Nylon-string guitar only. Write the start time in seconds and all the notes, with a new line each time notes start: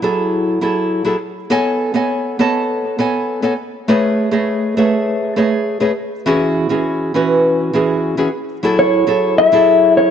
0.02 F#3 E4 G#4 A4
0.61 F#3 E4 G#4 A4
1.05 F#3 E4 G#4 A4
1.50 B3 A4 C#5 D#5 G#5
1.94 B3 A4 C#5 D#5 G#5
2.39 B3 A4 C#5 D#5 A5
2.98 B3 A4 C#5 D#5 G#5
3.42 B3 A4 C#5 D#5 G#5
3.88 A3 G#4 B4 C#5 D#5
4.31 A3 G#4 B4 C#5 D#5
4.77 A3 G#4 B4 C#5 E5
5.36 A3 G#4 B4 C#5 D#5
5.80 A3 G#4 B4 C#5 D#5
6.26 E3 C#4 F#4 G#4
6.69 E3 C#4 F#4 G#4
7.14 E3 C#4 F#4 B4
7.73 E3 C#4 F#4 G#4
8.17 E3 C#4 F#4 G#4
8.63 F#3 E4 G#4 A4
9.07 F#3 E4 G#4 A4
9.52 F#3 E4 G#4 A4